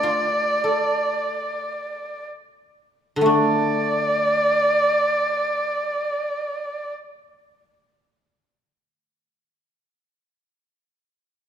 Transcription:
Already playing: D3 A3 D4 D5
0.03 F4
0.64 A4
3.16 D3
3.21 A3
3.26 D4 D5

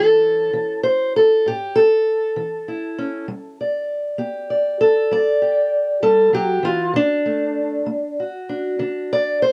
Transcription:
Already playing: A2 E3 C#4 E4 A4
0.53 E3
0.83 C5
1.16 A4
1.46 A2 G4
1.76 A4
2.36 E3
2.68 E4
2.98 C#4
3.28 G3
3.61 D5
4.18 B3 G4
4.50 D5
4.81 A4
5.11 G3 D5
5.42 G4
6.02 G3 A4
6.33 F#3 G4
6.63 E3 F4
6.93 D3 D4
7.26 A3
7.86 A3
8.20 F#4
8.49 D4
8.79 D3 D4
9.13 D5
9.42 C5

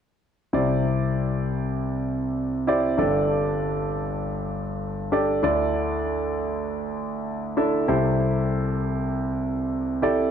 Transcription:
0.53 C2 C3 E4 G4 C5 D5
2.67 E4 G4 C5 D5
2.98 G1 G2 D4 G4 A4 D5
5.12 D4 G4 A4 D5
5.43 D2 D3 D4 E4 A4 D5
7.57 D4 E4 A4 E5
7.88 C2 C3 E4 G4 A4 C5
10.02 E4 G4 A4 D5

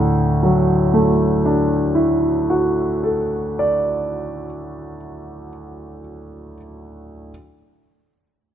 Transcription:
Already playing: D2 A2 D3
0.43 F#3
0.93 A3
1.46 D4
1.95 E4
2.50 F#4
3.03 A4
3.59 D5

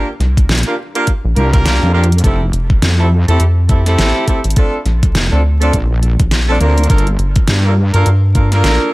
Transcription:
Already playing: downlifter
0.20 C2, snare, closed hi-hat
0.37 kick, closed hi-hat
0.49 A#1, snare, closed hi-hat
0.52 closed hi-hat
0.55 closed hi-hat
0.57 closed hi-hat
0.63 A#3 D4 F4 G4 A#4, closed hi-hat
0.95 A#3 D4 F4 G4 A#4, closed hi-hat
1.07 kick, closed hi-hat
1.25 A#1
1.36 C2 A#3 D4 F4 G4 A#4, closed hi-hat
1.53 A#3 D4 F4 G4 A#4, kick, closed hi-hat
1.65 C2, snare, closed hi-hat
1.83 F2, snare
1.94 A#3 D4 F4 G4 A#4
2.04 closed hi-hat
2.12 closed hi-hat
2.18 closed hi-hat
2.23 F1 A3 C4 E4 G4 A4, kick, closed hi-hat
2.53 F1, closed hi-hat
2.70 kick
2.82 F2, snare, closed hi-hat
2.99 A3 C4 E4 G4 A4
3.28 F2 A3 C4 E4 G4 A4, closed hi-hat
3.40 F2, closed hi-hat
3.69 A3 C4 E4 G4 A4, kick, closed hi-hat
3.86 A3 C4 E4 G4 A4, snare, closed hi-hat
3.98 A1, snare, closed hi-hat
4.27 A3 C4 E4 G4 A4, kick, closed hi-hat
4.44 A1, closed hi-hat
4.50 closed hi-hat
4.56 A3 C4 D4 F4 A4, kick, closed hi-hat
4.86 A#1, snare, closed hi-hat
5.03 kick, closed hi-hat
5.15 F1, snare, closed hi-hat
5.31 D2 A3 C4 D4 F4 A4
5.61 A3 C4 D4 F4 A4, closed hi-hat
5.73 A#1, kick, closed hi-hat
6.03 closed hi-hat
6.19 A#1, kick, closed hi-hat
6.31 snare, closed hi-hat
6.48 A3 C4 D4 F4 A4
6.55 snare
6.60 D2 A#3 C4 D4 F4 A#4, closed hi-hat
6.78 closed hi-hat
6.84 closed hi-hat
6.89 G1 A#3 D4 F4 A4 A#4, kick, closed hi-hat
6.98 closed hi-hat
7.07 closed hi-hat
7.19 G1, closed hi-hat
7.36 kick, closed hi-hat
7.47 G2, snare, closed hi-hat
7.65 A#3 D4 F4 A4 A#4
7.94 G2 A#3 D4 F4 A4 A#4, closed hi-hat
8.06 G2, closed hi-hat
8.35 A#3 D4 F4 A4 A#4, kick, closed hi-hat
8.52 A#3 D4 F4 A4 A#4, snare, closed hi-hat
8.64 A#1, snare, closed hi-hat

